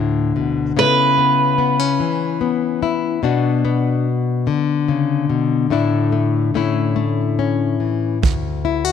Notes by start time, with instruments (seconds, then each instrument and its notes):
Already playing: nylon-string guitar D2 A2 D3 A3 E4 F#4
0.36 nylon-string guitar B2
0.77 nylon-string guitar C#3 B3 C#4 E4, steel-string acoustic guitar B4
1.18 nylon-string guitar B3
1.58 nylon-string guitar B3
1.80 nylon-string guitar C#4
2.00 nylon-string guitar E3
2.41 nylon-string guitar B3
2.83 nylon-string guitar E4
3.23 nylon-string guitar B2 B3 D4 F#4
3.65 nylon-string guitar B3
4.47 nylon-string guitar D3
4.88 nylon-string guitar C#3
5.30 nylon-string guitar B2
5.70 nylon-string guitar A2 A3 D4 E4
6.12 nylon-string guitar A3
6.54 nylon-string guitar A2 A3 C#4 E4
6.96 nylon-string guitar A3
7.39 nylon-string guitar C#4
7.80 nylon-string guitar E3
8.22 nylon-string guitar D2, kick, closed hi-hat
8.65 nylon-string guitar E4
8.85 nylon-string guitar F#4